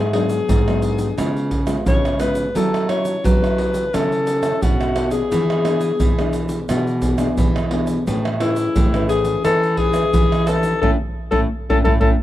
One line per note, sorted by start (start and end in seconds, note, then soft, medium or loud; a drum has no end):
0.00 0.38 G#2 medium
0.00 0.46 G#2 medium
0.00 0.13 G#4 medium
0.13 0.60 F#3 medium
0.13 0.60 B3 medium
0.13 0.60 D4 medium
0.13 1.48 G#4 medium
0.13 pandeiro medium
0.13 tamborim medium
0.29 pandeiro medium
0.29 shaker medium
0.48 1.14 G#2 medium
0.48 1.08 G#2 medium
0.48 pandeiro medium
0.48 shaker medium
0.48 surdo loud
0.67 1.13 F#3 medium
0.67 1.13 B3 medium
0.67 1.13 D4 medium
0.67 pandeiro soft
0.67 tamborim medium
0.67 shaker soft
0.82 pandeiro medium
0.82 shaker medium
0.98 pandeiro medium
0.98 shaker medium
1.17 1.83 C#3 medium
1.17 1.76 C#3 medium
1.17 1.50 G#3 medium
1.17 1.50 B3 medium
1.17 1.50 F4 medium
1.17 pandeiro medium
1.17 tamborim medium
1.17 shaker medium
1.17 surdo medium
1.36 pandeiro soft
1.36 shaker soft
1.51 pandeiro medium
1.51 surdo medium
1.66 2.14 G#3 medium
1.66 2.14 B3 medium
1.66 2.15 F4 medium
1.66 pandeiro medium
1.66 tamborim medium
1.66 shaker medium
1.86 2.52 G#2 medium
1.86 2.45 C#3 medium
1.86 2.19 C#5 loud
1.86 pandeiro medium
1.86 shaker medium
1.86 surdo loud
2.05 pandeiro soft
2.05 tamborim medium
2.05 shaker soft
2.19 2.52 G#3 medium
2.19 2.52 B3 medium
2.19 2.53 F4 medium
2.19 2.53 B4 loud
2.19 pandeiro medium
2.19 tamborim medium
2.19 shaker medium
2.35 pandeiro medium
2.35 shaker medium
2.55 3.21 F#3 medium
2.55 3.14 F#3 medium
2.55 2.85 C#4 medium
2.55 2.85 E4 medium
2.55 2.85 A4 medium
2.55 2.88 A4 loud
2.55 pandeiro medium
2.55 shaker medium
2.55 surdo medium
2.74 pandeiro soft
2.74 tamborim medium
2.74 shaker soft
2.88 3.36 C#4 medium
2.88 3.36 E4 medium
2.88 3.36 A4 medium
2.88 3.22 C#5 loud
2.88 pandeiro medium
2.88 tamborim medium
3.05 pandeiro medium
3.05 shaker medium
3.24 3.90 C#3 medium
3.24 3.83 F#3 medium
3.24 3.96 B4 loud
3.24 pandeiro medium
3.24 shaker medium
3.24 surdo loud
3.42 3.88 C#4 medium
3.42 3.88 E4 medium
3.42 3.88 A4 medium
3.42 pandeiro soft
3.42 tamborim medium
3.42 shaker soft
3.58 pandeiro medium
3.74 pandeiro medium
3.74 shaker medium
3.93 4.52 C#3 medium
3.93 4.59 F#3 medium
3.93 4.26 C#4 medium
3.93 4.26 E4 medium
3.93 4.26 A4 medium
3.93 4.64 A4 loud
3.93 pandeiro medium
3.93 tamborim medium
3.93 shaker medium
3.93 surdo medium
4.12 pandeiro soft
4.12 shaker soft
4.27 pandeiro medium
4.27 shaker medium
4.42 4.90 C#4 medium
4.42 4.90 E4 medium
4.42 4.90 A4 medium
4.42 pandeiro medium
4.42 tamborim medium
4.42 shaker medium
4.62 5.21 B2 medium
4.62 5.28 C#3 medium
4.62 5.13 F#4 medium
4.62 pandeiro medium
4.62 shaker medium
4.62 surdo loud
4.81 pandeiro soft
4.81 tamborim medium
4.81 shaker soft
4.95 5.08 C#4 medium
4.95 5.08 E4 medium
4.95 5.08 A4 medium
4.95 pandeiro medium
4.95 tamborim medium
5.11 5.59 B3 medium
5.11 5.59 D4 medium
5.11 6.51 G#4 medium
5.11 5.59 G#4 medium
5.11 pandeiro medium
5.11 shaker medium
5.31 5.97 E3 medium
5.31 5.90 E3 loud
5.31 pandeiro medium
5.31 shaker medium
5.31 surdo medium
5.50 pandeiro soft
5.50 tamborim medium
5.50 shaker soft
5.64 6.11 B3 medium
5.64 6.11 D4 medium
5.64 6.11 G#4 medium
5.64 pandeiro medium
5.64 tamborim medium
5.81 pandeiro medium
5.81 shaker medium
6.00 6.66 B2 medium
6.00 6.59 E3 medium
6.00 pandeiro medium
6.00 shaker medium
6.00 surdo loud
6.18 6.64 B3 medium
6.18 6.64 D4 medium
6.18 6.65 G#4 medium
6.18 pandeiro soft
6.18 tamborim medium
6.18 shaker soft
6.33 pandeiro medium
6.33 shaker medium
6.49 pandeiro medium
6.49 shaker medium
6.69 7.28 B2 medium
6.69 7.35 E3 medium
6.69 6.98 B3 medium
6.69 6.98 D4 medium
6.69 6.99 G#4 medium
6.69 pandeiro medium
6.69 tamborim medium
6.69 shaker medium
6.69 surdo medium
6.87 pandeiro soft
6.87 shaker soft
7.02 7.15 B3 medium
7.02 7.15 D4 medium
7.02 7.15 G#4 medium
7.02 pandeiro medium
7.02 shaker medium
7.02 surdo medium
7.18 7.66 B3 medium
7.18 7.66 D4 medium
7.18 7.66 G#4 medium
7.18 pandeiro medium
7.18 tamborim medium
7.18 shaker medium
7.37 8.04 B2 medium
7.37 7.97 E3 medium
7.37 pandeiro medium
7.37 shaker medium
7.37 surdo loud
7.56 pandeiro soft
7.56 tamborim medium
7.56 shaker soft
7.71 8.04 B3 medium
7.71 8.04 D4 medium
7.71 8.04 G#4 medium
7.71 pandeiro medium
7.71 tamborim medium
7.87 pandeiro medium
7.87 shaker medium
8.07 8.66 A2 loud
8.07 8.73 A3 medium
8.07 8.27 C#4 medium
8.07 8.28 G#4 medium
8.07 8.28 B4 medium
8.07 pandeiro medium
8.07 shaker medium
8.07 surdo medium
8.25 pandeiro soft
8.25 tamborim medium
8.25 shaker soft
8.40 8.87 C#4 medium
8.40 9.06 E4 loud
8.40 8.87 G#4 medium
8.40 8.88 B4 medium
8.40 pandeiro medium
8.40 tamborim medium
8.56 pandeiro medium
8.56 shaker medium
8.76 9.35 A2 medium
8.76 9.42 E3 medium
8.76 pandeiro medium
8.76 shaker medium
8.76 surdo loud
8.94 9.40 C#4 medium
8.94 9.40 G#4 medium
8.94 9.40 B4 medium
8.94 pandeiro soft
8.94 tamborim medium
8.94 shaker soft
9.09 9.42 G#4 loud
9.09 pandeiro medium
9.09 shaker medium
9.25 pandeiro medium
9.25 shaker medium
9.44 10.03 E3 loud
9.44 10.10 A3 medium
9.44 9.91 C#4 medium
9.44 9.79 A4 loud
9.44 9.92 B4 medium
9.44 pandeiro medium
9.44 tamborim medium
9.44 shaker medium
9.44 surdo medium
9.63 pandeiro soft
9.63 shaker soft
9.77 10.48 G#4 loud
9.77 pandeiro medium
9.77 surdo medium
9.94 10.42 C#4 medium
9.94 10.42 G#4 medium
9.94 10.42 B4 medium
9.94 pandeiro medium
9.94 tamborim medium
9.94 shaker medium
10.14 10.73 E3 medium
10.14 10.79 E3 medium
10.14 pandeiro medium
10.14 shaker medium
10.14 surdo loud
10.32 pandeiro soft
10.32 tamborim medium
10.32 shaker soft
10.46 10.82 C#4 medium
10.46 10.81 A4 loud
10.46 10.82 B4 medium
10.46 pandeiro medium
10.46 tamborim medium
10.46 shaker medium
10.63 pandeiro medium
10.63 shaker medium
10.81 10.96 A2 loud
10.81 10.94 A3 medium
10.81 10.94 C#4 loud
10.81 10.94 E4 loud
10.81 10.90 A4 loud
10.81 surdo loud
11.31 11.46 A2 loud
11.31 11.44 A3 loud
11.31 11.44 C#4 loud
11.31 11.44 E4 loud
11.31 11.40 A4 loud
11.31 surdo medium
11.69 11.82 A2 medium
11.69 11.80 A3 medium
11.69 11.80 C#4 loud
11.69 11.80 E4 loud
11.69 11.78 A4 medium
11.69 surdo loud
11.85 11.98 A2 loud
11.85 11.97 A3 medium
11.85 11.96 C#4 loud
11.85 11.97 E4 loud
11.85 11.93 A4 loud
11.85 surdo loud
12.00 12.15 A2 loud
12.00 12.13 A3 loud
12.00 12.13 C#4 loud
12.00 12.13 E4 loud
12.00 12.10 A4 medium
12.00 surdo loud